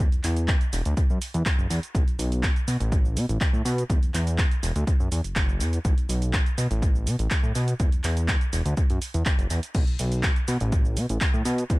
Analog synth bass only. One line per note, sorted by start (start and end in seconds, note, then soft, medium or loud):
0.12 0.22 E2 soft
0.24 0.56 E2 medium
0.73 0.82 E1 medium
0.86 0.94 D2 loud
1.10 1.19 F#2 loud
1.34 1.43 E2 loud
1.46 1.56 F#1 soft
1.59 1.67 F#1 medium
1.70 1.80 E2 medium
1.95 2.04 B1 loud
2.07 2.17 B1 soft
2.19 2.51 B1 medium
2.68 2.77 B2 medium
2.80 3.18 A1 loud
3.16 3.26 B2 loud
3.29 3.38 A1 medium
3.53 3.62 A2 loud
3.65 3.84 B2 loud
3.90 3.99 E2 loud
4.02 4.12 E2 soft
4.14 4.46 E2 medium
4.63 4.72 E1 loud
4.76 4.84 D2 loud
5.00 5.09 F#2 medium
5.12 5.21 E2 medium
5.24 5.34 F#1 soft
5.36 5.62 F#1 loud
5.60 5.79 E2 medium
5.85 5.94 B1 loud
5.97 6.07 B1 soft
6.09 6.41 B1 medium
6.58 6.67 B2 medium
6.71 7.08 A1 loud
7.07 7.16 B2 loud
7.19 7.28 A1 medium
7.43 7.52 A2 loud
7.56 7.74 B2 loud
7.80 7.89 E2 loud
7.93 8.02 E2 soft
8.04 8.36 E2 medium
8.53 8.62 E1 medium
8.65 8.74 D2 loud
8.90 8.99 F#2 loud
9.14 9.23 E2 loud
9.26 9.36 F#1 soft
9.38 9.47 F#1 medium
9.50 9.60 E2 medium
9.75 9.84 B1 loud
9.88 9.97 B1 soft
10.00 10.31 B1 medium
10.48 10.57 B2 medium
10.61 10.98 A1 loud
10.97 11.06 B2 loud
11.10 11.18 A1 medium
11.34 11.43 A2 loud
11.45 11.64 B2 loud
11.70 11.79 E2 loud